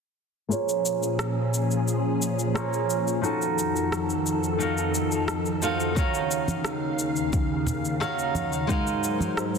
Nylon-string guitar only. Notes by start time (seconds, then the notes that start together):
0.48 A#3 F4 G#4 C5 C#5
2.54 A#3 F4 G#4 C5 C#5
3.21 F3 D#4 F#4 A4
3.26 A5
4.59 F3 D#4 F#4 A4
4.63 F5
5.62 F3 D#4 F#4 A4 F5
5.95 D#3 D#4 F#4 C#5
5.99 F5
8.00 D#3 D#4 F#4 C#5 F5
8.67 G#3 D#4 F#4 A#4
8.71 F5